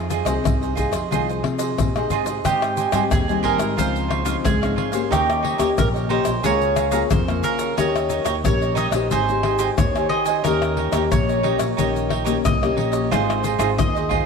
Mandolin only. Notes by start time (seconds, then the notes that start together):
2.45 G4
3.12 G#4
3.45 A#4
3.79 C5
4.45 G#4
5.12 G4
5.79 A#4
6.10 C5
6.45 C#5
7.12 C5
7.44 A#4
7.78 C#5
8.45 C#5
8.77 D#5
9.12 C5
9.78 C#5
10.09 D#5
10.44 A#4
11.12 C#5
12.45 D#5
13.12 C5
13.78 D#5